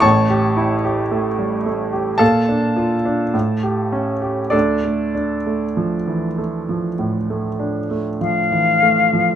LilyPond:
<<
  \new Staff \with { instrumentName = "Flute" } { \time 4/4 \key d \minor \tempo 4 = 50 r1 | r2. f''4 | }
  \new Staff \with { instrumentName = "Grand piano" } { \time 4/4 \key d \minor <cis'' a'' cis'''>2 <a' f'' a''>2 | <d' a' d''>2. r4 | }
  \new Staff \with { instrumentName = "Grand piano" } { \time 4/4 \key d \minor <a,, a,>16 g'16 e'16 g'16 a16 g16 a16 g'16 bes,16 d'16 f'16 d'16 a,16 g'16 cis'16 g'16 | d,16 a16 d'16 a16 f16 e16 a16 f16 a,16 a16 d'16 a16 f16 e16 a16 f16 | }
>>